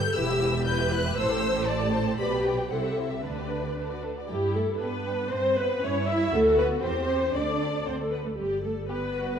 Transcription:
Already playing: viola section A4, violin section G6
0.15 double bass section E1, cello section E2, violin section E4 B4 E6, viola section G4
0.30 violin section G4 E5
0.42 violin section E4 B4
0.54 violin section G4 E5
0.66 violin section E4 B4 G6, viola section B4
0.79 violin section G4 E5
0.92 violin section E4 B4 F#6
1.05 violin section G4 E5
1.18 double bass section A1, cello section A2, violin section A4 C5 E6, viola section C5
1.30 violin section G4 A4
1.42 violin section A4 C5
1.55 violin section G4 A4
1.67 violin section A4 C5 A5, viola section D5
1.81 violin section G4 A4
1.93 violin section A4 C5, viola section C5
2.07 violin section G4 A4
2.18 double bass section B1, cello section B2, violin section B4 D5 B5
2.22 viola section G4
2.32 violin section G4 B4
2.45 violin section B4 D5 G5
2.58 violin section G4 B4
2.71 double bass section C2, cello section C3, violin section E4 C5 F#5, viola section A4
2.85 violin section G4 E5
2.97 violin section E4 C5 E5
3.10 violin section G4 E5
3.23 double bass section D2, cello section D3, violin section D4 B4 D5, viola section B4
3.37 violin section G4 D5
3.50 violin section D4 B4
3.63 violin section G4 D5
3.78 violin section D4 A4
3.90 violin section F#4 D5
4.02 violin section D4 A4
4.16 violin section F#4 D5
4.28 double bass section G2, cello section G3, violin section E4 G5, viola section G4
4.54 cello section A3, viola section A4, violin section G5
4.80 double bass section G2, cello section B3, violin section D4 G5, viola section B4
5.05 violin section G5
5.31 double bass section G2, cello section C4, violin section C4 E5, viola section C5
5.57 cello section B3, viola section B4, violin section E5
5.83 double bass section G2, cello section C#4, violin section E4 E5, viola section C#5
6.08 cello section E4, viola section E5, violin section E5
6.32 double bass section D2, cello section A3, violin section F#4 F#5, viola section A4
6.57 cello section B3, viola section B4, violin section F#5
6.81 double bass section E2, cello section C4, violin section G4 G5, viola section C5
7.09 violin section G5
7.33 double bass section D2, cello section D4, violin section A4 G5, viola section D5
7.61 violin section G5
7.86 double bass section D2, cello section C4, viola section C5, violin section F#5
7.99 cello section A3, viola section A4
8.12 cello section B3, viola section B4, violin section F#5
8.25 cello section A3, viola section A4
8.38 double bass section G1, cello section G3, viola section G4, violin section D5
8.64 cello section A3, viola section A4
8.89 cello section B3, violin section G4 D5, viola section B4
9.15 violin section F#4

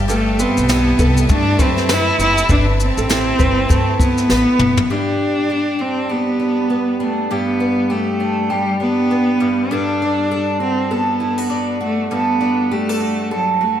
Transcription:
Already playing: upright bass G1, twelve-string acoustic guitar B3, string section G4 E5 A5
0.08 twelve-string acoustic guitar G2, cello A3, nylon-string guitar A4, shaker
0.39 cello B3, twelve-string acoustic guitar C4, nylon-string guitar B4, shaker
0.57 upright bass B1, shaker
0.69 twelve-string acoustic guitar E4, nylon-string guitar G4, snare, tambourine, shaker
0.99 upright bass C2, nylon-string guitar A4, twelve-string acoustic guitar B4, kick, shaker
1.17 shaker
1.29 upright bass G2, twelve-string acoustic guitar A3, cello D4, kick, shaker
1.59 upright bass F#2, cello C4, twelve-string acoustic guitar E4, nylon-string guitar B4, kick, shaker
1.77 snare
1.89 twelve-string acoustic guitar B4, snare, tambourine, shaker
1.93 cello E4
2.19 upright bass F#1, twelve-string acoustic guitar C4, cello E4, shaker
2.38 shaker
2.49 upright bass G1, cello D4, nylon-string guitar B4, kick, shaker
2.80 cello C4, shaker
2.97 upright bass A1, nylon-string guitar A4, shaker
3.09 twelve-string acoustic guitar E4, nylon-string guitar G4, snare, tambourine, shaker
3.39 upright bass G1, twelve-string acoustic guitar B4, nylon-string guitar B4, kick, shaker
3.69 upright bass G2, twelve-string acoustic guitar A3, kick, shaker
4.00 upright bass G1, cello B3, twelve-string acoustic guitar E4, kick, shaker
4.18 snare, shaker
4.29 upright bass A1, twelve-string acoustic guitar B4, snare, tambourine
4.59 upright bass F#1, mid tom
4.77 floor tom
4.90 twelve-string acoustic guitar G2 G4, cello D4
5.50 twelve-string acoustic guitar G4
5.79 cello C4, twelve-string acoustic guitar D4
6.10 cello B3, twelve-string acoustic guitar G4
6.40 twelve-string acoustic guitar D4
6.70 twelve-string acoustic guitar B3
7.00 cello A3, twelve-string acoustic guitar D4
7.31 twelve-string acoustic guitar G2 G4, cello B3
7.60 twelve-string acoustic guitar B3
7.90 cello A3, twelve-string acoustic guitar G4
8.20 twelve-string acoustic guitar D4
8.50 cello G3, twelve-string acoustic guitar G4
8.80 cello B3, twelve-string acoustic guitar D4
9.11 twelve-string acoustic guitar B3
9.40 twelve-string acoustic guitar G2
9.71 twelve-string acoustic guitar G2 A4, cello D4
10.02 twelve-string acoustic guitar D4
10.31 twelve-string acoustic guitar A4
10.60 cello C4, twelve-string acoustic guitar F#4
10.91 cello B3, twelve-string acoustic guitar A4
11.20 twelve-string acoustic guitar E4
11.38 twelve-string acoustic guitar F#4
11.50 twelve-string acoustic guitar D4
11.81 cello A3, twelve-string acoustic guitar F#4
12.11 twelve-string acoustic guitar G2 A4, cello B3
12.41 twelve-string acoustic guitar D4
12.71 cello A3, twelve-string acoustic guitar G4
12.89 twelve-string acoustic guitar A4
13.00 twelve-string acoustic guitar F#4
13.31 cello F#3, twelve-string acoustic guitar A4
13.61 cello A3, twelve-string acoustic guitar F#4

